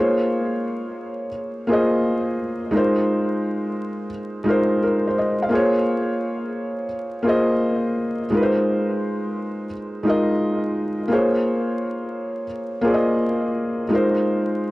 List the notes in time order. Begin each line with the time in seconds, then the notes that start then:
Already playing: A#3 F4 G#4 C5
0.00 C#5
1.67 A#3 F4 G#4
1.71 C5 D#5
2.71 G#3 D#4 F4
2.75 A#4 C5
4.44 G#3 D#4 F4
4.49 A#4 C5
4.83 A#4
5.07 C5
5.18 D#5
5.42 F5
5.49 A#3 F4 G#4
5.54 C5 C#5
7.23 A#3 F4 G#4
7.27 C5 D#5
8.30 G#3 D#4 F4
8.35 A#4 B4
8.43 C5
10.03 G#3 D#4 F4
10.08 A#4 D#5
11.08 A#3 F4 G#4
11.12 C5 C#5
12.81 A#3 F4 G#4
12.86 C5 D5
12.94 D#5
13.89 G#3 D#4 F4
13.93 A#4 C5